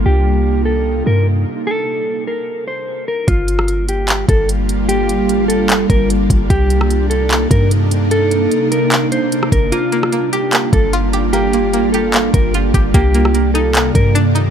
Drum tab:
HH |----------------|----------------|x-x-x-x-x-x-x-x-|x-x-x-x-x-x-x-x-|
CP |----------------|----------------|--------x-------|--------x-------|
SD |----------------|----------------|---r------------|----------------|
BD |----------------|----------------|o---------o-----|----------o---o-|

HH |x-x-x-x-x-x-x-x-|x-x-x-x-x-x-x-x-|x-x-x-x-x-x-x-x-|x-x-x-x-x-x-x-x-|
CP |--------x-------|--------x-------|--------x-------|--------x-------|
SD |---r------------|-------------r--|---r------------|----------------|
BD |o---------o-----|--------------o-|----------o-----|----------o---o-|

HH |x-x-x-x-x-x-x-x-|
CP |--------x-------|
SD |---r------------|
BD |o---------o-----|